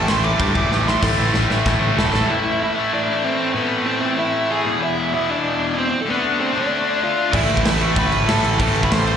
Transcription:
0.08 A1 A2 E3 A3 C4 E4 C6, snare, crash
0.24 A2 E3 A3 C4 E4 D6, crash
0.39 G2 A2 E3 A3 C4 E4, kick, crash
0.54 E1 A2 E3 A3 C4 E4, kick, crash
0.71 A1 A2 E3 A3 C4 E4, snare
0.87 A2 E3 A3 C4 E4 C6, snare
1.02 A1 A2 E3 A3 C4 E4, kick, snare, crash
1.18 A1 A2 E3 A3 C4 E4
1.34 A1 A2 E3 A3 C4 E4, snare
1.50 A1 A2 E3 A3 C4 E4, snare
1.66 A1 A2 E3 A3 C4 E4, kick, snare
1.80 A1 A2 E3 A3 C4 E4
1.97 E1 A2 E3 A3 C4 E4 A4 A5, snare
2.12 A1 A2 E3 A3 C4 E4, snare
2.28 A2 E3 A3 E4 E5
2.62 E4 E5
2.75 E3 A3
2.79 A2
2.94 D4 D5
3.24 C4 C5
3.53 A2 E3 A3 B3 B4
3.86 C4 C5
4.01 A2 E3 A3
4.18 E4 E5
4.51 G#4 G#5
4.63 E2 B2
4.67 E3
4.83 E4 E5
5.11 E2 B2 E3 E4 E5
5.30 D4 D5
5.77 C4 C5
6.02 D3 A4
6.08 A3 B3 D4 B4
6.40 C4 C5
6.53 A3 D4
6.57 D3 D5
7.03 F4 F5
7.32 A1 A2 E3 A3 C4 E4 E5, kick, crash
7.49 A1, crash
7.57 kick
7.65 A1 E4 E5, snare, crash
7.79 E3 A3, crash
7.84 A2
7.96 A1 B4 B5, kick, crash
8.11 G#1 A2 E3 A3 C4 E4, crash
8.28 A2 E3 A3 C4 E4 A4 A5, snare, crash
8.43 A1, crash
8.59 A1 A2 E3 A3 C4 E4 A4 A5, kick, crash
8.74 A1, crash
8.83 B4 B5, kick
8.91 A1 C5 C6, snare, crash
9.06 A2 E3 A3, crash

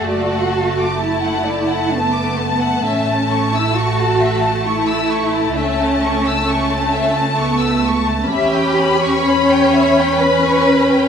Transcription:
Already playing: A3
0.05 F#1 F#4 D5 A5
0.32 F#5
0.53 A5
0.78 D6
0.99 E4 A5
1.23 F#5
1.46 D5
1.68 F#5
1.92 B3 A5
2.13 D6
2.38 A5
2.60 F#5
2.84 A1 A3 C#4 E5
3.08 A5
3.32 C#6
3.54 E4 E6
3.75 F#4 C#6
3.99 A5
4.21 E5
4.43 A5
4.65 E4 C#6
4.89 E6
5.11 C#6
5.34 A5
5.56 C#2 C#4 E5 A5
5.80 A5
6.03 C#6
6.26 E6
6.47 C#4 C#6
6.72 A5
6.94 E5
7.17 A5
7.38 B3 C#6
7.61 E6
7.87 C#6
8.08 A5
8.30 E2 C#4 G4 E5 B5
8.55 G5
8.79 B5
9.03 C#6
9.27 C#5 B5
9.51 G5
9.74 E5
9.99 G5
10.20 B4 B5
10.45 C#6
10.66 B5
10.89 G5

